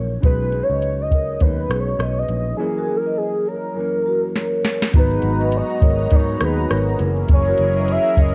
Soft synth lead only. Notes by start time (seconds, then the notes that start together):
0.25 B4
0.63 C#5
1.01 D#5
1.41 B4
1.80 C#5
2.18 D#5
2.57 G#4
2.96 A#4
3.17 G#4
3.48 A#4
4.98 B4
5.57 D#5
6.15 C#5
6.44 B4
7.33 C#5
7.91 E5
8.20 D#5